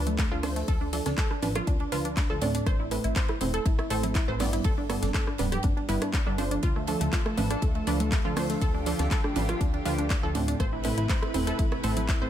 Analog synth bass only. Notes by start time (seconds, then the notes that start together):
Already playing: D2
0.32 D2
0.68 D2
1.06 D2
1.42 A1
1.67 D2
1.92 D2
2.30 D2
2.66 A1
3.04 A1
3.41 E1
3.66 A1
3.90 A1
4.28 A1
4.65 G1
5.03 G1
5.39 D1
5.64 G1
5.89 G1
6.27 G1
6.63 D2
7.01 D2
7.37 A1
7.62 D2
7.87 D2
8.25 D2
8.61 D2
8.99 D2
9.36 A1
9.61 D2
9.86 D2
10.23 D2
10.60 A1
10.98 A1
11.34 E1
11.59 A1
11.84 A1
12.22 A1